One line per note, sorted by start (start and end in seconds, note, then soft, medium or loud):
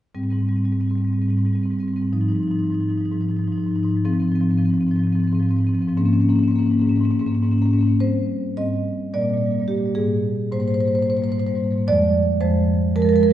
0.15 0.24 G#2 medium
0.15 0.23 G3 soft
0.15 0.23 C4 soft
0.23 0.33 G#2 soft
0.23 0.31 G3 soft
0.23 0.30 C4 soft
0.30 0.43 G#2 soft
0.30 0.41 G3 soft
0.30 0.39 C4 soft
0.39 0.53 G#2 soft
0.39 0.49 G3 soft
0.39 0.48 C4 soft
0.48 0.58 G3 soft
0.48 0.56 C4 soft
0.53 0.61 G#2 soft
0.53 0.64 C4 soft
0.58 0.71 G#2 soft
0.58 0.65 G3 soft
0.64 0.73 G3 soft
0.64 0.73 C4 soft
0.71 0.82 G#2 soft
0.71 0.80 G3 soft
0.71 0.81 C4 soft
0.80 0.91 G#2 soft
0.80 0.88 G3 soft
0.80 0.90 C4 soft
0.88 1.00 G#2 soft
0.88 0.96 G3 soft
0.88 0.98 C4 soft
0.96 1.05 G3 soft
0.96 1.07 C4 soft
1.00 1.10 G#2 soft
1.05 1.13 G3 soft
1.05 1.14 C4 soft
1.10 1.19 G#2 soft
1.10 1.22 G3 soft
1.14 1.22 C4 soft
1.19 1.28 G#2 soft
1.19 1.30 G3 soft
1.19 1.30 C4 soft
1.28 1.37 G#2 soft
1.28 1.37 G3 soft
1.28 1.39 C4 soft
1.37 1.46 G#2 soft
1.37 1.45 G3 soft
1.37 1.46 C4 soft
1.45 1.55 G#2 soft
1.45 1.53 G3 soft
1.45 1.55 C4 soft
1.53 1.65 G#2 soft
1.53 1.62 G3 soft
1.53 1.63 C4 soft
1.62 1.74 G#2 soft
1.62 1.70 G3 soft
1.62 1.71 C4 soft
1.70 1.83 G#2 soft
1.70 1.79 G3 soft
1.70 1.80 C4 soft
1.79 1.88 G3 soft
1.79 1.88 C4 soft
1.83 1.93 G#2 soft
1.88 1.97 G3 soft
1.88 1.96 C4 soft
1.93 2.02 G#2 soft
1.93 2.09 G3 soft
1.93 2.04 C4 soft
2.02 2.09 G#2 soft
2.02 2.09 C4 soft
2.13 2.22 G#2 medium
2.13 2.21 F3 soft
2.13 2.21 D#4 soft
2.21 2.32 G#2 soft
2.21 2.30 F3 soft
2.21 2.29 D#4 soft
2.29 2.41 G#2 soft
2.29 2.39 F3 soft
2.29 2.36 D#4 soft
2.36 2.48 F3 soft
2.36 2.43 D#4 soft
2.41 2.51 G#2 soft
2.41 2.51 D#4 soft
2.48 2.61 G#2 soft
2.48 2.56 F3 soft
2.48 2.59 D#4 soft
2.56 2.64 F3 soft
2.56 2.67 D#4 soft
2.61 2.71 G#2 soft
2.61 2.72 F3 soft
2.67 2.74 D#4 soft
2.71 2.81 G#2 soft
2.71 2.81 F3 soft
2.71 2.83 D#4 soft
2.81 2.91 G#2 soft
2.81 2.88 F3 soft
2.81 2.90 D#4 soft
2.88 3.01 G#2 soft
2.88 2.97 F3 soft
2.88 2.98 D#4 soft
2.97 3.11 G#2 soft
2.97 3.06 F3 soft
2.97 3.05 D#4 soft
3.05 3.14 F3 soft
3.05 3.13 D#4 soft
3.11 3.21 G#2 soft
3.11 3.22 F3 soft
3.11 3.21 D#4 soft
3.21 3.30 G#2 soft
3.21 3.31 F3 soft
3.21 3.29 D#4 soft
3.29 3.39 G#2 soft
3.29 3.39 F3 soft
3.29 3.37 D#4 soft
3.37 3.48 G#2 soft
3.37 3.48 F3 soft
3.37 3.44 D#4 soft
3.44 3.56 F3 soft
3.44 3.52 D#4 soft
3.48 3.57 G#2 soft
3.52 3.64 F3 soft
3.52 3.60 D#4 soft
3.57 3.66 G#2 soft
3.57 3.68 D#4 soft
3.64 3.76 G#2 soft
3.64 3.72 F3 soft
3.68 3.80 F3 soft
3.68 3.76 D#4 soft
3.76 3.85 G#2 soft
3.76 3.89 F3 soft
3.76 3.83 D#4 soft
3.83 3.95 G#2 soft
3.83 3.91 D#4 soft
3.89 3.97 F3 soft
3.89 4.02 D#4 soft
3.95 4.02 G#2 soft
3.95 4.02 F3 soft
4.05 4.14 G#2 medium
4.05 4.14 F3 soft
4.05 4.13 C4 soft
4.13 4.22 G#2 soft
4.13 4.22 F3 soft
4.13 4.20 C4 soft
4.20 4.32 G#2 medium
4.20 4.32 F3 soft
4.20 4.28 C4 soft
4.28 4.35 C4 soft
4.32 4.41 G#2 soft
4.32 4.41 F3 soft
4.32 4.43 C4 soft
4.41 4.50 G#2 medium
4.41 4.49 F3 soft
4.41 4.51 C4 soft
4.49 4.60 G#2 soft
4.49 4.58 F3 soft
4.49 4.57 C4 soft
4.57 4.70 G#2 soft
4.57 4.66 F3 soft
4.57 4.65 C4 soft
4.65 4.74 F3 soft
4.65 4.73 C4 soft
4.70 4.78 G#2 soft
4.70 4.81 C4 soft
4.74 4.87 G#2 soft
4.74 4.82 F3 soft
4.81 4.91 F3 soft
4.81 4.89 C4 soft
4.87 4.96 G#2 soft
4.87 4.96 C4 soft
4.91 4.99 F3 soft
4.96 5.05 G#2 soft
4.96 5.07 F3 soft
4.96 5.04 C4 soft
5.04 5.15 G#2 soft
5.04 5.15 F3 soft
5.04 5.13 C4 soft
5.13 5.24 G#2 soft
5.13 5.24 F3 soft
5.13 5.20 C4 soft
5.20 5.33 G#2 soft
5.20 5.32 F3 soft
5.20 5.27 C4 soft
5.27 5.35 C4 soft
5.32 5.41 G#2 medium
5.32 5.40 F3 soft
5.32 5.43 C4 soft
5.40 5.51 G#2 soft
5.40 5.49 F3 soft
5.40 5.51 C4 soft
5.49 5.61 G#2 medium
5.49 5.57 F3 soft
5.49 5.59 C4 soft
5.57 5.69 G#2 soft
5.57 5.64 F3 soft
5.57 5.67 C4 soft
5.64 5.74 F3 soft
5.64 5.75 C4 soft
5.69 5.79 G#2 soft
5.74 5.81 F3 soft
5.74 5.82 C4 soft
5.79 5.88 G#2 soft
5.79 5.88 F3 soft
5.79 5.89 C4 soft
5.88 5.93 G#2 medium
5.88 5.93 F3 soft
5.88 5.93 C4 soft
5.97 6.09 G#2 medium
5.97 6.06 A#3 medium
5.97 6.05 C#4 medium
6.05 6.19 G#2 medium
6.05 6.14 A#3 soft
6.05 6.13 C#4 soft
6.13 6.22 A#3 soft
6.13 6.20 C#4 soft
6.19 6.28 G#2 medium
6.19 6.30 A#3 soft
6.19 6.29 C#4 soft
6.28 6.39 G#2 soft
6.28 6.39 A#3 soft
6.28 6.36 C#4 soft
6.36 6.48 G#2 medium
6.36 6.48 A#3 soft
6.36 6.43 C#4 soft
6.43 6.51 C#4 soft
6.48 6.60 G#2 medium
6.48 6.56 A#3 soft
6.48 6.59 C#4 soft
6.56 6.63 A#3 soft
6.56 6.66 C#4 soft
6.60 6.70 G#2 medium
6.60 6.71 A#3 soft
6.66 6.74 C#4 soft
6.70 6.81 G#2 medium
6.70 6.80 A#3 soft
6.70 6.82 C#4 soft
6.80 6.91 G#2 medium
6.80 6.87 A#3 soft
6.80 6.89 C#4 soft
6.87 7.00 G#2 medium
6.87 6.96 A#3 soft
6.87 6.98 C#4 soft
6.96 7.03 A#3 soft
6.96 7.05 C#4 soft
7.00 7.11 G#2 medium
7.00 7.11 A#3 soft
7.05 7.12 C#4 soft
7.11 7.21 G#2 medium
7.11 7.19 A#3 soft
7.11 7.19 C#4 soft
7.19 7.32 G#2 medium
7.19 7.28 A#3 soft
7.19 7.26 C#4 soft
7.26 7.36 A#3 soft
7.26 7.35 C#4 soft
7.32 7.42 G#2 medium
7.32 7.43 C#4 soft
7.36 7.45 A#3 soft
7.42 7.53 G#2 medium
7.42 7.53 A#3 soft
7.42 7.52 C#4 soft
7.52 7.63 G#2 medium
7.52 7.62 A#3 soft
7.52 7.58 C#4 soft
7.58 7.71 A#3 soft
7.58 7.66 C#4 soft
7.63 7.73 G#2 medium
7.63 7.73 C#4 soft
7.71 7.82 G#2 medium
7.71 7.79 A#3 soft
7.71 7.81 C#4 soft
7.79 7.96 G#2 medium
7.79 7.87 A#3 soft
7.79 7.88 C#4 soft
7.87 7.96 A#3 soft
7.87 7.96 C#4 soft
8.00 8.55 G#2 soft
8.00 8.55 G3 soft
8.00 8.55 C4 soft
8.00 8.54 C5 medium
8.57 9.11 G#2 soft
8.57 9.11 G3 soft
8.57 9.11 C4 soft
8.57 9.11 D#5 medium
9.14 9.24 A#2 soft
9.14 9.21 G3 soft
9.14 9.22 A#3 soft
9.14 9.66 D5 medium
9.21 9.34 A#2 soft
9.21 9.29 G3 soft
9.21 9.29 A#3 soft
9.29 9.38 G3 soft
9.29 9.36 A#3 soft
9.34 9.42 A#2 soft
9.34 9.46 G3 soft
9.34 9.44 A#3 soft
9.42 9.51 A#2 soft
9.42 9.54 G3 soft
9.42 9.51 A#3 soft
9.51 9.60 A#2 soft
9.51 9.62 G3 soft
9.51 9.60 A#3 soft
9.60 9.71 A#2 soft
9.60 9.69 G3 soft
9.60 9.67 A#3 soft
9.67 9.80 A#2 soft
9.67 9.78 G3 soft
9.67 9.75 A#3 soft
9.67 9.94 G4 medium
9.75 9.86 G3 soft
9.75 9.82 A#3 soft
9.80 9.93 A#2 soft
9.80 9.93 A#3 soft
9.86 9.93 G3 soft
9.95 10.50 G#2 medium
9.95 10.49 G3 soft
9.95 10.50 A#3 soft
9.95 10.49 G#4 medium
10.52 10.61 G#2 medium
10.52 10.62 G3 soft
10.52 10.61 A#3 soft
10.52 10.60 C5 medium
10.60 10.70 G#2 soft
10.60 10.71 G3 soft
10.60 10.69 A#3 soft
10.60 10.68 C5 medium
10.68 10.80 G#2 soft
10.68 10.80 G3 soft
10.68 10.77 A#3 soft
10.68 10.74 C5 medium
10.74 10.85 A#3 soft
10.74 10.81 C5 medium
10.80 10.88 G#2 soft
10.80 10.89 G3 soft
10.80 10.88 C5 medium
10.85 10.99 G#2 soft
10.85 10.97 G3 soft
10.85 10.93 A#3 soft
10.85 10.95 C5 medium
10.93 11.01 A#3 soft
10.93 11.02 C5 medium
10.97 11.08 G#2 soft
10.97 11.06 G3 soft
10.97 11.10 A#3 soft
11.02 11.14 G3 soft
11.02 11.10 C5 medium
11.08 11.18 G#2 soft
11.08 11.17 A#3 soft
11.08 11.17 C5 medium
11.14 11.29 G#2 soft
11.14 11.22 G3 soft
11.14 11.24 A#3 soft
11.14 11.24 C5 medium
11.22 11.30 G3 soft
11.22 11.32 A#3 soft
11.22 11.32 C5 medium
11.29 11.38 G#2 soft
11.29 11.39 G3 soft
11.29 11.40 A#3 soft
11.29 11.40 C5 medium
11.38 11.47 G#2 soft
11.38 11.47 G3 soft
11.38 11.49 A#3 soft
11.38 11.47 C5 medium
11.47 11.57 G#2 soft
11.47 11.56 G3 soft
11.47 11.57 A#3 soft
11.47 11.57 C5 medium
11.56 11.66 G#2 soft
11.56 11.64 G3 soft
11.56 11.64 A#3 soft
11.64 11.75 G#2 soft
11.64 11.72 G3 soft
11.64 11.71 A#3 soft
11.71 11.84 G3 soft
11.71 11.78 A#3 soft
11.75 11.84 G#2 soft
11.75 11.84 A#3 soft
11.87 12.40 F2 medium
11.87 12.40 F3 soft
11.87 12.40 G#3 soft
11.87 12.39 D5 loud
12.41 12.94 F2 medium
12.41 12.94 F3 medium
12.41 12.94 G#3 soft
12.41 12.93 C5 medium
12.96 13.07 F2 medium
12.96 13.05 F3 medium
12.96 13.05 G#3 medium
12.96 13.02 A#4 medium
13.02 13.13 F3 soft
13.02 13.14 G#3 soft
13.02 13.09 A#4 medium
13.07 13.17 F2 soft
13.07 13.16 A#4 medium
13.13 13.21 F3 soft
13.13 13.22 G#3 soft
13.13 13.23 A#4 medium
13.17 13.27 F2 medium
13.17 13.29 F3 soft
13.22 13.33 G#3 soft
13.22 13.33 A#4 medium
13.27 13.33 F2 soft
13.27 13.33 F3 soft